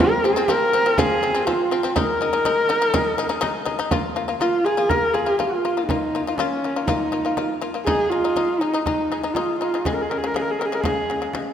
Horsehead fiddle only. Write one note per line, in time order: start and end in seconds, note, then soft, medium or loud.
0.01 0.26 A#4 medium
0.24 0.52 G#4 medium
0.50 0.99 A#4 loud
0.97 1.48 G#4 medium
1.47 1.98 F4 medium
1.97 3.68 A#4 medium
4.41 4.66 F4 medium
4.65 4.91 G#4 medium
4.89 5.16 A#4 medium
5.14 5.40 G#4 medium
5.38 5.86 F4 medium
5.86 6.38 D#4 medium
6.36 6.87 C#4 medium
6.86 7.61 D#4 medium
7.85 8.11 G#4 medium
8.10 8.62 F4 medium
8.60 8.84 D#4 medium
8.85 9.35 D#4 medium
9.34 9.59 F4 medium
9.59 9.88 F4 medium
9.86 9.95 G#4 medium
9.94 10.03 A#4 medium
10.01 10.11 G#4 medium
10.09 10.19 A#4 medium
10.18 10.28 G#4 medium
10.27 10.36 A#4 medium
10.35 10.43 G#4 medium
10.42 10.52 A#4 medium
10.51 10.61 G#4 medium
10.59 10.67 A#4 medium
10.66 10.76 G#4 medium
10.75 10.82 A#4 medium
10.81 11.32 G#4 medium